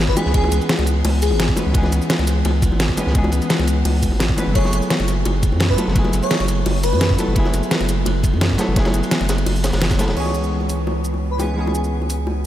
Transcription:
Already playing: G#1 E3 G#3 B3 C#4 G#4
0.08 B4, kick
0.15 E3 G#3 B3 C#4 G#4 B4, closed hi-hat, ride, high bongo, shaker
0.26 C#2, snare
0.31 E3 G#3 B3 G#4, kick, closed hi-hat, ride
0.36 C#4 G#4
0.43 ride, high bongo
0.52 C#2, closed hi-hat, ride, shaker
0.61 ride, shaker
0.69 snare, closed hi-hat, ride
0.79 C#2, closed hi-hat, high bongo
0.86 closed hi-hat, ride, shaker
1.04 C#2, closed hi-hat, open hi-hat, high bongo
1.22 G#4, closed hi-hat, ride, shaker
1.31 G#1, high bongo
1.39 snare, closed hi-hat, ride
1.49 kick
1.56 E3 G#3 B3 C#4 B4, closed hi-hat, ride, high bongo, shaker
1.66 C#2
1.71 E3 G#3 B3, kick, closed hi-hat, ride
1.76 C#4 G#4
1.83 snare, high bongo
1.92 C#2, closed hi-hat, ride, shaker
2.02 shaker
2.10 snare, closed hi-hat, ride
2.19 C#2, closed hi-hat, high bongo
2.27 snare, closed hi-hat, ride, shaker
2.45 C#2, closed hi-hat, ride, high bongo
2.62 kick, closed hi-hat, ride, shaker
2.72 G#1, high bongo
2.80 snare, closed hi-hat, ride
2.89 kick
2.96 E3 G#3 B3 C#4 B4, closed hi-hat, ride, high bongo, shaker
3.07 C#2, snare
3.12 E3 G#3 B3, kick, closed hi-hat, ride
3.17 C#4 G#4
3.24 ride, high bongo
3.32 C#2, closed hi-hat, ride, shaker
3.42 closed hi-hat, ride, shaker
3.50 snare, closed hi-hat, ride
3.59 C#2, closed hi-hat, high bongo
3.67 closed hi-hat, ride, shaker
3.85 C#2, closed hi-hat, open hi-hat, high bongo
4.03 kick, closed hi-hat, ride, shaker
4.12 G#1, high bongo
4.20 snare, closed hi-hat, ride
4.29 kick
4.36 E3 G#3 B3 C#4 B4, closed hi-hat, ride, high bongo, shaker
4.47 F#1
4.52 F#3 A3 B3 C#5, kick, closed hi-hat, ride
4.57 E4 G#4
4.65 snare, high bongo
4.73 F#1, closed hi-hat, ride, shaker
4.82 shaker
4.90 snare, closed hi-hat, ride
5.00 F#1, closed hi-hat, high bongo
5.08 snare, closed hi-hat, ride, shaker
5.25 F#1, closed hi-hat, ride, high bongo
5.43 kick, closed hi-hat, ride, shaker
5.52 F#2, high bongo
5.60 snare, closed hi-hat, ride
5.70 B4, kick
5.77 F#3 A3 B3 E4 A4, closed hi-hat, ride, high bongo, shaker
5.87 F#1, snare
5.92 F#3 A3 B3, kick, closed hi-hat, ride
5.97 E4 G#4
6.04 ride, high bongo
6.13 F#1, closed hi-hat, ride, shaker
6.23 C#5, ride, shaker
6.30 snare, closed hi-hat, ride
6.40 F#1, closed hi-hat, high bongo
6.48 closed hi-hat, ride, shaker
6.66 F#1, closed hi-hat, open hi-hat, high bongo
6.83 B4, closed hi-hat, ride, shaker
6.93 F#2, high bongo
7.01 snare, closed hi-hat, ride
7.10 kick
7.17 F#3 A3 B3 E4 A4, closed hi-hat, ride, high bongo, shaker
7.28 F#1
7.33 F#3 A3 B3, kick, closed hi-hat, ride
7.38 E4 G#4
7.45 snare, high bongo
7.53 F#1, closed hi-hat, ride, shaker
7.63 shaker
7.71 snare, closed hi-hat, ride
7.80 F#1, closed hi-hat, high bongo
7.88 snare, closed hi-hat, ride, shaker
8.06 F#1, closed hi-hat, ride, high bongo
8.24 kick, closed hi-hat, ride, shaker
8.33 F#2, high bongo
8.41 snare, closed hi-hat, ride
8.50 kick
8.57 F#3 A3 B3 E4 A4, snare, closed hi-hat, ride, high bongo, shaker
8.68 F#1
8.73 F#3 A3 B3, kick, snare, closed hi-hat, ride
8.78 E4 G#4
8.85 snare, ride, high bongo
8.94 F#1, closed hi-hat, shaker
9.03 ride, shaker
9.11 snare, closed hi-hat, ride
9.21 F#1, closed hi-hat, high bongo
9.29 snare, closed hi-hat, ride, shaker
9.38 closed hi-hat
9.46 F#1, closed hi-hat, open hi-hat, high bongo
9.56 shaker
9.64 snare, closed hi-hat, ride, shaker
9.73 F#1, snare, closed hi-hat, ride, high bongo
9.80 snare, closed hi-hat, ride
9.90 kick, snare, ride, shaker
9.98 F#3 A3 B3 E4 A4, snare, closed hi-hat, ride, high bongo, shaker
10.08 E1, snare, ride
10.13 C#2 E3 G#3 B3 C#5, crash
10.18 C#4 G#4
10.26 high bongo
10.34 shaker
10.44 shaker
10.61 high bongo
10.69 open hi-hat, shaker
10.87 high bongo
11.04 shaker
11.14 high bongo
11.31 B4
11.38 E3 G#3 B3 C#4 G#4 B4, open hi-hat, high bongo, shaker
11.54 E3 G#3 B3 G#4
11.59 C#4 G#4
11.67 high bongo
11.75 shaker
11.84 shaker
12.02 high bongo
12.10 open hi-hat, shaker
12.27 high bongo

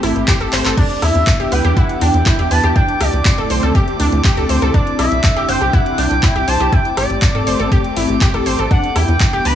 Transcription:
Already playing: A3 C4 G4
0.03 A1 E4, cross-stick, open hi-hat
0.16 A1, closed hi-hat
0.28 G4, kick, clap, closed hi-hat
0.41 A1 A4, closed hi-hat
0.53 A1 C5, clap, open hi-hat
0.65 A1 A4, clap, closed hi-hat
0.77 E3 B3 D4 E4 D5 D6, kick, closed hi-hat, crash
0.90 closed hi-hat
1.02 E2 E4 E5, cross-stick, open hi-hat
1.15 E2, closed hi-hat
1.27 kick, clap, closed hi-hat
1.40 E1 G4, closed hi-hat
1.52 D2 B4 G5, open hi-hat
1.65 E2 G4, closed hi-hat
1.77 E4 F#5, kick, closed hi-hat
1.89 closed hi-hat
2.01 E2 D4 G5, open hi-hat
2.14 E2, closed hi-hat
2.26 E4, kick, clap, closed hi-hat
2.39 E2 G4, closed hi-hat
2.51 E2 B4 A5, open hi-hat
2.64 E2 G4, closed hi-hat
2.76 D3 A3 C4 D4 E4 G5, kick, closed hi-hat
2.88 closed hi-hat
3.01 D2 G4 D5, cross-stick, open hi-hat
3.13 D2, closed hi-hat
3.25 kick, clap, closed hi-hat
3.38 D1 A4, closed hi-hat
3.50 C2 C5, open hi-hat
3.63 D2 A4, closed hi-hat
3.75 G4, kick, closed hi-hat
3.88 closed hi-hat
4.00 D2 D4, open hi-hat
4.12 D2, closed hi-hat
4.24 G4, kick, clap, closed hi-hat
4.37 D2 A4, closed hi-hat
4.49 D2 C5, open hi-hat
4.62 D2 A4, closed hi-hat
4.74 C3 D4 D5, kick, closed hi-hat
4.87 closed hi-hat
4.99 C2 E4 E5, cross-stick, open hi-hat
5.12 C2, closed hi-hat
5.24 kick, clap, closed hi-hat
5.37 G1 G4, closed hi-hat
5.49 G1 C5 G5, open hi-hat
5.61 C2 G4, closed hi-hat
5.73 E4 F#5, kick, closed hi-hat
5.86 closed hi-hat
5.98 C2 D4 G5, open hi-hat
6.11 C2, closed hi-hat
6.23 E4, kick, clap, closed hi-hat
6.36 C2 G4, closed hi-hat
6.48 C2 C5 A5, open hi-hat
6.60 C2 G4, closed hi-hat
6.72 A3 C4 E4 G4 G5, kick, closed hi-hat
6.85 closed hi-hat
6.97 A1 G4 D5, cross-stick, open hi-hat
7.10 A1, closed hi-hat
7.22 kick, clap, closed hi-hat
7.35 A2 A4, closed hi-hat
7.47 G1 C5, open hi-hat
7.60 A1 A4, closed hi-hat
7.72 G4, kick, closed hi-hat
7.84 closed hi-hat
7.96 A1 E4, open hi-hat
8.09 A1
8.21 G4, kick, clap, closed hi-hat
8.34 A1 A4, closed hi-hat
8.46 A1 C5, open hi-hat
8.59 A1 A4, closed hi-hat
8.71 E3 B3 D4 E4 G4 F#5, kick, closed hi-hat
8.84 closed hi-hat
8.96 E2 E4 G5, cross-stick, open hi-hat
9.08 E2, closed hi-hat
9.20 kick, clap, closed hi-hat
9.33 E1 G4, closed hi-hat
9.45 D2 B4 B5, open hi-hat

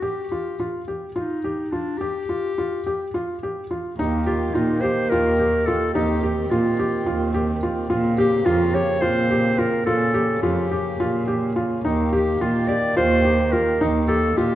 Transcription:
0.02 G4
0.32 F4
0.60 F4
0.88 G4
1.16 D#4 F4
1.44 G4
1.72 D4 F4
1.98 G4
2.29 F4
2.58 F4
2.86 G4
3.14 F4
3.43 G4
3.71 F4
3.97 D#2 D#3 A#3 D#4 G4
4.26 F4 G4
4.54 A#2 D#4 F4
4.81 G4 C5
5.10 D#2 F4 A#4
5.39 G4
5.66 F4 A4
5.93 D#2 C4 D#4 G4
6.23 G4
6.50 A#2 F4
6.79 G4
7.06 D#2 F4
7.34 G4
7.63 F4
7.90 A#2 C#3 A#3 F4
8.18 G4
8.46 F2 F4
8.74 G4 C#5
9.01 A#2 F4 C5
9.30 G4
9.58 F4 A#4
9.86 A#2 C#4 F4 A4
10.14 G4
10.42 F2 F4 G4
10.71 G4
11.00 A#2 F4
11.28 G4
11.56 F4
11.84 D#2 D#3 D#4 G4
12.13 G4
12.41 A#2 F4
12.68 G4 D5
12.97 D#2 F4 C5
13.25 G4
13.52 F4 A#4
13.81 D#2 D#4
14.08 G4 A4
14.37 A#2 F4 G4

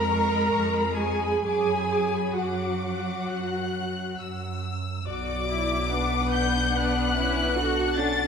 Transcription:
Already playing: F2 G#3 A#4 A#5 B5
0.11 C#6
0.32 B5
0.53 F2 C#6
0.75 B5
0.96 G#4 G#5 C#6
1.22 B5
1.43 F#2 F#3 G#4 G#5 D6
1.69 B5
1.92 D6
2.15 B5
2.36 F#2 F#4 F#5 D6
3.29 F#2 F#6
4.18 F#2 E6
5.06 B1 F#3 F#4 D5 D6
5.50 E4
5.91 B3 D4 B4 F#5
6.33 D4 G6
6.73 B3 D4 B4 F#6
7.15 C#4 E4
7.56 D4 F#4 A4 F#5
7.96 C#4 D4 A6

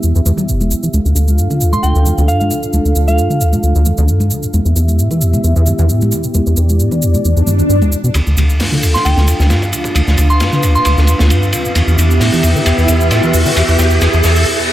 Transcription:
Already playing: B3 E4 G4 E5
0.03 E2, shaker
0.15 E2, shaker
0.26 E2, high conga, low conga, shaker
0.37 G3, muted conga, low conga, shaker
0.49 E1, shaker
0.61 high conga, shaker
0.71 G2, shaker
0.83 E3, shaker
0.93 D2 D4 F4 A4 F5, high conga, shaker
1.05 D2, shaker
1.15 D2, shaker
1.28 high conga, shaker
1.38 G2, shaker
1.50 D3, muted conga, shaker
1.61 D2, shaker
1.73 C3 C6, high conga, shaker
1.83 D2 G5, shaker
1.95 D2, shaker
2.06 F2, muted conga, high conga, low conga, shaker
2.18 D2, muted conga, low conga, shaker
2.28 G2 F5, shaker
2.40 F5, high conga, shaker
2.51 D3, muted conga, shaker
2.63 F2, shaker
2.73 D2, high conga, shaker
2.85 D2, shaker
2.96 D2, shaker
3.08 F5, high conga, shaker
3.18 G2, shaker
3.30 D3, muted conga, shaker
3.40 D2, shaker
3.53 C3, high conga, shaker
3.63 D2, shaker
3.75 D2, shaker
3.86 F2, high conga, low conga, shaker
3.98 D2, muted conga, low conga, shaker
4.08 G2, shaker
4.20 high conga, shaker
4.31 D3, shaker
4.43 F2, shaker
4.53 E2 B3 E4 G4 E5, high conga, shaker
4.65 E2, shaker
4.76 E2, shaker
4.88 high conga, shaker
4.99 A2, shaker
5.11 E3, muted conga, shaker
5.21 E2, shaker
5.34 D3, high conga, shaker
5.44 E2, shaker
5.56 E2, shaker
5.66 G2, muted conga, high conga, low conga, shaker
5.79 E2, muted conga, low conga, shaker
5.89 A2, shaker
6.01 high conga, shaker
6.12 E3, muted conga, shaker
6.23 G2, shaker
6.34 E2 D5, high conga, shaker
6.46 E2, shaker
6.57 E2, shaker
6.69 high conga, shaker
6.80 A2, shaker
6.91 E3, muted conga, shaker
7.02 E2, shaker
7.14 D3, high conga, shaker
7.25 E2, swell, shaker
7.37 E2, shaker
7.46 G2, high conga, low conga, shaker
7.58 D2, muted conga, low conga, shaker
7.69 G2, shaker
7.82 D2, muted conga, high conga, shaker
7.92 E2, shaker
8.04 B2, shaker
8.14 D2 D4 F4 A4 F5, kick, ride, riser, shaker
8.27 D2, shaker
8.37 D2, ride, shaker
8.50 shaker
8.60 G2, snare, open hi-hat, shaker
8.72 D3, snare, shaker
8.82 D2, ride, shaker
8.94 C3 C6, snare, shaker
9.05 D2 G5, ride, shaker
9.17 D2, snare, shaker
9.28 F2, ride, shaker
9.40 D2, snare, shaker
9.50 G2, snare, ride, shaker
9.62 kick, shaker
9.73 D3, ride, shaker
9.84 F2, kick, shaker
9.95 D2 B4, kick, ride, shaker
10.07 D2, snare, shaker
10.18 D2, kick, ride, shaker
10.30 C6, shaker
10.40 G2, snare, ride, shaker
10.52 D3, snare, shaker
10.63 D2, kick, ride, shaker
10.75 C3 C6, shaker
10.85 D2 C6, ride, shaker
10.98 D2, snare, shaker
11.07 F2, ride, shaker
11.19 D2, snare, shaker
11.30 G2, ride, shaker
11.43 shaker
11.53 D3, ride, shaker
11.65 F2, shaker
11.75 E2 B3 E4 G4 E5, snare, ride, shaker
11.87 E2, shaker
11.98 E2, ride, shaker
12.11 shaker
12.20 A2, snare, open hi-hat, shaker
12.33 E3, shaker
12.43 E2, ride, shaker
12.56 D3, shaker
12.65 E2, snare, ride, shaker
12.78 E2, shaker
12.88 E2, ride, shaker
13.01 shaker
13.11 A2, snare, ride, shaker
13.23 E3, shaker
13.33 E2, open hi-hat, shaker
13.40 open hi-hat
13.46 D3, open hi-hat, shaker
13.51 open hi-hat
13.55 E2, snare, ride, shaker
13.68 E2, shaker
13.78 E2, snare, ride, shaker
13.91 shaker
14.01 E2, snare, ride, shaker
14.13 E2, shaker
14.24 E2, snare, open hi-hat, shaker
14.36 open hi-hat, shaker
14.46 reverse cymbal

